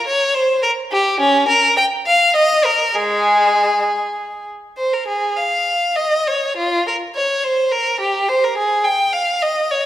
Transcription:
0.07 0.34 C#5 medium
0.34 0.62 C5 medium
0.63 0.71 A#4 medium
0.92 1.19 G4 medium
1.20 1.47 C#4 medium
1.48 1.76 A#4 medium
1.77 1.85 G5 medium
2.06 2.35 F5 medium
2.36 2.65 D#5 medium
2.65 2.95 A#4 medium
2.95 3.82 G#3 medium
2.95 4.47 G#4 medium
4.77 4.91 C5 medium
4.93 5.08 A#4 soft
5.07 5.36 G#4 medium
5.36 5.95 F5 medium
5.96 6.26 D#5 medium
6.27 6.57 C#5 medium
6.56 6.86 F4 medium
6.87 6.95 A#4 medium
7.15 7.43 C#5 medium
7.44 7.72 C5 medium
7.72 8.00 A#4 medium
8.00 8.28 G4 medium
8.29 8.43 C5 medium
8.44 8.58 A#4 medium
8.57 8.85 G#4 medium
8.84 9.13 G5 medium
9.13 9.42 F5 medium
9.42 9.72 D#5 medium
9.71 9.86 C#5 medium

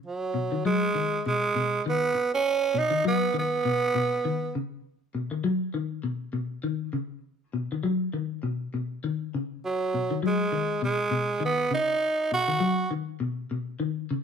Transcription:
0.06 0.62 F#3 medium
0.34 0.48 B2 medium
0.52 0.63 D#3 medium
0.65 0.89 F#3 medium
0.65 1.22 G#3 loud
0.95 1.19 D#3 medium
1.26 1.50 B2 medium
1.26 1.83 G#3 loud
1.55 1.79 B2 medium
1.86 2.10 D#3 medium
1.86 2.31 B3 loud
2.15 muted clean electric guitar stroke medium
2.34 2.80 C#4 loud
2.74 2.88 B2 medium
2.78 3.07 D#4 loud
2.90 3.02 D#3 medium
3.05 3.29 F#3 loud
3.05 3.35 B3 loud
3.34 3.58 D#3 medium
3.39 4.53 B3 loud
3.65 3.89 B2 medium
3.95 4.19 B2 medium
4.25 4.49 D#3 medium
4.55 4.79 C#3 medium
5.15 5.28 B2 medium
5.31 5.42 D#3 medium
5.44 5.68 F#3 loud
5.74 5.98 D#3 medium
6.03 6.28 B2 medium
6.33 6.58 B2 medium
6.63 6.88 D#3 medium
6.93 7.18 C#3 medium
7.53 7.67 B2 medium
7.72 7.82 D#3 medium
7.83 8.08 F#3 medium
8.13 8.38 D#3 medium
8.43 8.67 B2 medium
8.74 8.98 B2 medium
9.04 9.28 D#3 medium
9.34 9.58 C#3 medium
9.65 10.21 F#3 medium
9.94 10.07 B2 medium
10.11 10.21 D#3 medium
10.23 10.47 F#3 medium
10.23 10.81 G#3 medium
10.52 10.77 D#3 medium
10.82 11.06 B2 medium
10.82 11.40 G#3 loud
11.11 11.36 B2 medium
11.40 11.65 D#3 medium
11.45 11.72 B3 loud
11.71 11.96 C#3 medium
11.71 12.30 D#4 loud
12.32 12.45 B2 medium
12.32 12.89 F#4 loud
12.48 12.59 D#3 medium
12.60 12.85 F#3 loud
12.91 13.15 D#3 medium
13.20 13.45 B2 medium
13.51 13.75 B2 medium
13.80 14.04 D#3 medium
14.11 14.24 C#3 medium

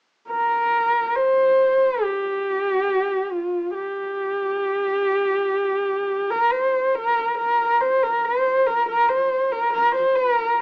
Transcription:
0.29 1.17 A#4 medium
1.15 2.05 C5 medium
2.03 3.32 G4 medium
3.31 3.73 F4 medium
3.74 6.32 G4 medium
6.30 6.54 A#4 medium
6.52 6.96 C5 medium
6.95 7.37 A#4 medium
7.38 7.82 A#4 medium
7.81 8.05 C5 medium
8.03 8.26 A#4 medium
8.25 8.68 C5 medium
8.67 8.88 A#4 medium
8.89 9.11 A#4 medium
9.09 9.53 C5 medium
9.52 9.72 A#4 medium
9.73 9.93 A#4 medium
9.95 10.17 C5 medium
10.16 10.61 A#4 medium

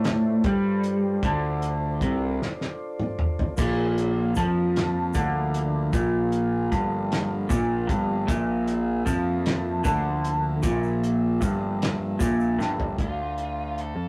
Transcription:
0.00 0.40 A2 medium
0.00 0.43 A3 medium
0.00 3.55 D4 medium
0.00 12.95 F4 soft
0.00 3.55 A4 medium
0.00 3.54 C5 medium
0.00 3.55 D5 medium
0.04 snare loud
0.04 closed hi-hat medium
0.44 1.19 G2 medium
0.44 1.22 G3 medium
0.44 kick loud
0.44 closed hi-hat medium
0.83 closed hi-hat medium
1.23 1.97 D2 medium
1.23 2.01 D3 medium
1.23 kick medium
1.23 closed hi-hat medium
1.62 closed hi-hat medium
2.01 2.38 C2 medium
2.01 2.40 C3 medium
2.01 kick medium
2.01 closed hi-hat medium
2.42 snare medium
2.61 snare medium
3.00 mid tom medium
3.19 mid tom medium
3.39 floor tom medium
3.56 4.32 A#1 medium
3.56 4.35 A#2 medium
3.56 12.94 F3 medium
3.56 12.95 A#3 medium
3.56 12.94 A#4 medium
3.56 8.24 F5 medium
3.56 kick loud
3.56 closed hi-hat medium
3.56 crash medium
3.56 shaker medium
3.98 closed hi-hat medium
4.35 5.11 F2 medium
4.35 5.14 F3 medium
4.35 kick medium
4.35 closed hi-hat medium
4.35 shaker medium
4.76 snare loud
4.76 closed hi-hat medium
5.14 5.89 D2 medium
5.14 5.92 D3 loud
5.14 kick loud
5.14 closed hi-hat medium
5.14 shaker medium
5.54 closed hi-hat medium
5.54 shaker soft
5.93 6.67 A#1 medium
5.93 6.70 A#2 medium
5.93 kick loud
5.93 closed hi-hat medium
5.93 shaker medium
6.32 closed hi-hat medium
6.72 7.46 G1 medium
6.72 7.49 G2 medium
6.72 kick medium
6.72 closed hi-hat medium
7.12 snare loud
7.12 closed hi-hat medium
7.49 7.86 A#1 loud
7.49 7.87 A#2 medium
7.49 kick loud
7.49 closed hi-hat medium
7.49 shaker medium
7.87 8.25 G1 medium
7.87 8.26 G2 medium
7.87 kick medium
7.87 closed hi-hat medium
7.87 shaker soft
8.27 9.03 A#1 medium
8.27 9.05 A#2 medium
8.27 12.94 E5 medium
8.27 kick medium
8.27 closed hi-hat medium
8.27 shaker medium
8.67 closed hi-hat medium
9.06 9.81 F2 loud
9.06 9.83 F3 medium
9.06 kick medium
9.06 closed hi-hat medium
9.06 shaker medium
9.46 snare loud
9.46 closed hi-hat medium
9.84 10.60 D2 loud
9.84 10.62 D3 medium
9.84 kick loud
9.84 closed hi-hat medium
9.84 shaker medium
10.24 closed hi-hat medium
10.24 shaker soft
10.63 11.38 A#1 medium
10.63 11.40 A#2 medium
10.63 kick medium
10.63 closed hi-hat medium
10.63 shaker medium
10.83 shaker soft
11.04 closed hi-hat medium
11.41 12.16 G1 medium
11.41 12.19 G2 medium
11.41 kick medium
11.41 closed hi-hat medium
11.41 shaker medium
11.82 snare loud
11.82 closed hi-hat medium
12.19 12.57 A#1 loud
12.19 12.58 A#2 medium
12.19 kick loud
12.19 closed hi-hat medium
12.19 shaker loud
12.40 shaker soft
12.58 12.95 G1 medium
12.58 12.97 G2 medium
12.58 snare medium
12.58 shaker soft
12.80 floor tom medium
12.98 13.93 D2 medium
12.98 13.81 F4 medium
12.98 kick loud
12.98 closed hi-hat medium
13.38 closed hi-hat soft
13.78 14.08 A4 medium
13.78 closed hi-hat soft
13.96 14.08 F2 medium

